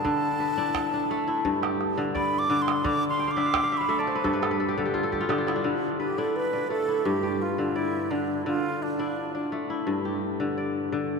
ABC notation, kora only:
X:1
M:4/4
L:1/16
Q:1/4=86
K:Ddor
V:1 name="Kora"
z2 B E2 D2 E2 G3 d3 z | z3/2 f/2 g/2 f/2 e/2 f/2 g/2 f/2 e/2 f/2 e/2 d/2 c/2 B/2 A/2 B/2 A/2 B/2 A/2 G/2 A/2 G/2 F/2 A/2 G/2 F/2 G/2 F/2 E/2 D/2- | D/2 z3/2 B E2 D2 E2 G3 d3 z | z3 E2 D2 E2 G3 d3 z |]
V:2 name="Kora" clef=bass
D,2 z D2 z A,2 G,,2 z D,2 z D,2 | D,2 z D2 z A,2 G,,2 z D,2 z D,2 | D,2 z D2 z A,2 G,,2 z D,2 z D,2 | D,2 z D2 z A,2 G,,2 z D,2 z D,2 |]